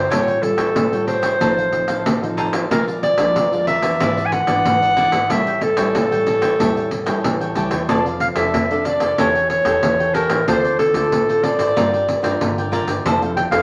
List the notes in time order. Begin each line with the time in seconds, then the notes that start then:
Already playing: C5
0.10 A1 A2 G3 C#4 F4 G4 A4 C#5 G5, pandeiro
0.27 A4 C#5 G5, pandeiro
0.42 G3 C#4 F4 A4, muted cavaquinho stroke, pandeiro
0.57 A1 A4 C#5 G5, pandeiro
0.76 A2, pandeiro
0.92 G3 C#4 F4 A4 C#5 G5, pandeiro
1.07 G4 A4 C5 C#5 G5, pandeiro
1.22 A1 A4 C#5 G5, pandeiro
1.40 A1 A2 F3 C4 D#4 A4 C5 F5, pandeiro
1.57 A4 C5 F5, pandeiro
1.71 F3 C4 D#4, muted cavaquinho stroke, pandeiro
1.88 A1 A4 C5 F5, pandeiro
2.05 A1 A2, pandeiro
2.22 F3 C4 D#4 A4 C5 F5, pandeiro
2.37 D#4 A4 C5 F5, pandeiro
2.53 A1 A4 C5 F5, pandeiro
2.70 A#1 A#2 F3 G#3 D4 G#4 A#4 D5 F5, pandeiro
2.88 A#4 D5 F5, pandeiro
3.03 D5, muted cavaquinho stroke, pandeiro
3.17 A#1 F3 G#3 D4 A#4 D5 F5, pandeiro
3.35 F2 A#2, pandeiro
3.52 F3 G#3 D4 A#4 D5 F5, pandeiro
3.67 G#4 A#4 D5 E5 F5, pandeiro
3.82 A#1 E3 B3 D4 A#4 D5 F5, pandeiro
4.00 G#1 G#2 E4 G#4 B4 D5, pandeiro
4.17 G#4 B4 D5, pandeiro
4.26 G#5
4.32 F#5, muted cavaquinho stroke, pandeiro
4.47 G#1 E3 B3 D4 G#4 B4 D5, pandeiro
4.65 G#1 G#2, pandeiro
4.82 G#4 B4 D5, pandeiro
4.97 E3 B3 D4 E4 G#4 B4 D5, pandeiro
5.12 G#1 G#4 B4 D5, pandeiro
5.30 A1 A2 G3 C#4 E4 G4 A4 C#5 E5 G5, pandeiro
5.47 A4 C#5 G5, pandeiro
5.61 A4, muted cavaquinho stroke, pandeiro
5.77 A1 G3 C#4 E4 A4 C#5 G5, pandeiro
5.95 A2 E3, pandeiro
6.11 G3 C#4 E4 A4 C#5 G5, pandeiro
6.26 G4 A4 C#5 G5, pandeiro
6.42 A1 A4 C#5 G5, pandeiro
6.59 E2 A2 G3 C#4 E4 G4 A4 C#5 G5, pandeiro
6.76 A4 C#5 G5, pandeiro
6.91 muted cavaquinho stroke, pandeiro
7.06 A1 G3 C#4 E4 A4 C#5 G5, pandeiro
7.24 A1 E3, pandeiro
7.41 A4 C#5 G5, pandeiro
7.55 C#2 G3 C#4 E4 G4 A4 C#5 G5, pandeiro
7.71 E2 A4 C#5 G5, pandeiro
7.89 F1 F3 C4 D4 A4 D5 F5, pandeiro
8.06 A4 D5 F5, pandeiro
8.20 F5, muted cavaquinho stroke, pandeiro
8.36 F1 C4 D4 A4 D5 E5, pandeiro
8.54 F2 C3, pandeiro
8.71 C4 D4 A4 D5 F5, pandeiro
8.85 D4 A4 D5 F5, pandeiro
9.00 F1 A4 D5 F5, pandeiro
9.18 E1 E3 C#4 E4 G4 A4 C#5 G5, pandeiro
9.35 A4 C#5 G5, pandeiro
9.50 C#5, muted cavaquinho stroke, pandeiro
9.65 E1 C#4 G4 A4 C#5 G5, pandeiro
9.83 E1 E3, pandeiro
10.00 A4 C#5 G5, pandeiro
10.14 C#4 E4 G4 A4 A#4 C#5 G5, pandeiro
10.29 A1 A4 C#5 G5, pandeiro
10.47 D2 D3 C4 F4 A4 C5 D5, pandeiro
10.64 A4 C5 D5, pandeiro
10.79 A4, muted cavaquinho stroke, pandeiro
10.94 D2 C4 F4 A4 C5 D5, pandeiro
11.12 A2 D3, pandeiro
11.29 C4 F4 A4 C5 D5, pandeiro
11.43 F4 A4 C5 D5, pandeiro
11.58 G#1 A4 C5 D5, pandeiro
11.76 G1 G3 D4 F4 A#4 D5 G5, pandeiro
11.93 A#4 D5 G5, pandeiro
12.08 muted cavaquinho stroke, pandeiro
12.23 G1 D4 F4 A#4 D5 G5, pandeiro
12.41 G1 D3, pandeiro
12.58 A#4 D5 G5, pandeiro
12.72 D4 F4 A#4 D5 G5, pandeiro
12.87 G1 A#4 D5 G5, pandeiro
13.05 F1 F3 C4 D4 E4 A4 C5 F5, pandeiro
13.22 A4 C5 F5, pandeiro
13.37 G5, muted cavaquinho stroke, pandeiro
13.51 F1 C4 E4 A4 C5 F5, pandeiro